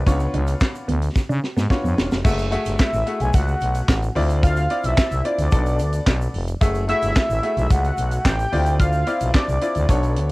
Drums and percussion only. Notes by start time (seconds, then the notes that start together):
0.06 kick, closed hi-hat, shaker
0.20 closed hi-hat, shaker
0.34 closed hi-hat
0.47 closed hi-hat, shaker
0.60 kick, snare, clap, shaker
0.75 closed hi-hat, shaker
0.88 closed hi-hat
1.02 closed hi-hat, shaker
1.16 kick, snare, shaker
1.31 shaker
1.44 snare
1.57 snare, shaker
1.70 kick, snare, shaker
1.85 shaker
1.98 snare, shaker
2.11 snare, shaker
2.25 kick, crash, shaker
2.38 closed hi-hat, shaker
2.52 closed hi-hat
2.65 closed hi-hat, shaker
2.79 kick, snare, clap, shaker
2.93 shaker
3.06 closed hi-hat
3.20 closed hi-hat, shaker
3.33 kick, closed hi-hat, shaker
3.48 shaker
3.60 closed hi-hat, shaker
3.74 closed hi-hat, shaker
3.88 kick, snare, clap, shaker
4.02 closed hi-hat, shaker
4.16 open hi-hat
4.29 closed hi-hat, shaker
4.43 kick, closed hi-hat, shaker
4.56 closed hi-hat, shaker
4.70 closed hi-hat
4.84 closed hi-hat, shaker
4.97 kick, snare, clap, shaker
5.11 closed hi-hat, shaker
5.25 closed hi-hat
5.38 closed hi-hat, shaker
5.51 kick, closed hi-hat, shaker
5.66 closed hi-hat, shaker
5.79 closed hi-hat, shaker
5.93 closed hi-hat, shaker
6.07 kick, snare, clap, shaker
6.21 shaker
6.34 open hi-hat
6.48 closed hi-hat, shaker
6.61 kick, closed hi-hat, shaker
6.75 closed hi-hat, shaker
6.88 closed hi-hat
7.02 closed hi-hat, shaker
7.15 kick, snare, clap, shaker
7.30 shaker
7.43 closed hi-hat
7.57 closed hi-hat, shaker
7.70 kick, closed hi-hat, shaker
7.84 closed hi-hat, shaker
7.97 closed hi-hat, shaker
8.11 closed hi-hat, shaker
8.25 kick, snare, clap, shaker
8.39 closed hi-hat, shaker
8.52 open hi-hat
8.66 closed hi-hat, shaker
8.80 kick, closed hi-hat, shaker
8.92 shaker
9.07 closed hi-hat, shaker
9.20 closed hi-hat, shaker
9.34 kick, snare, clap, shaker
9.48 closed hi-hat, shaker
9.61 closed hi-hat, shaker
9.75 closed hi-hat, shaker
9.89 kick, closed hi-hat, shaker
10.03 closed hi-hat, shaker
10.16 closed hi-hat